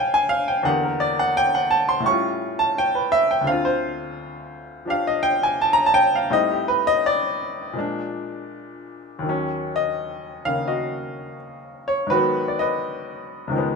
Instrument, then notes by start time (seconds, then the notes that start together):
upright piano
Already playing: G#2 G3 A#3 C4 F5 G5 G#5
0.14 G#5
0.29 F5
0.48 G5
0.63 E2 D3 A#3 F#5
0.68 G4
0.83 A#4
1.00 D5
1.19 F#5
1.37 G5
1.55 F#5
1.71 A5
1.89 C6
2.00 A2 G3
2.06 C#4 C#6
2.11 F4
2.59 A5
2.78 G5
2.95 B4
3.12 E5
3.31 G5
3.41 D2 D3
3.47 C4 F5
3.51 F4
3.65 C5
4.86 F3 D4 G4
4.90 F5
5.07 D#5
5.23 G5
5.43 G#5
5.61 A5
5.73 A#5
5.86 A5
5.94 G5
6.15 F5
6.30 A2 G3 C4 D#4 D#5
6.51 G4
6.68 B4
6.87 D#5
7.06 D5
7.73 A#2 F3 G#3
7.79 D4
9.19 D#2 D#3
9.26 F#3 C#4
9.76 D#5
10.45 C#3 D#3 A#3 F5
10.68 F#4 D#5
11.88 C#5
12.07 G#2 D#3 B4
12.11 F#3 F#4
12.17 B3
12.48 D5
12.59 B4 D#5
13.47 C#2 G#2
13.52 D#3 F3
13.56 G#3 B3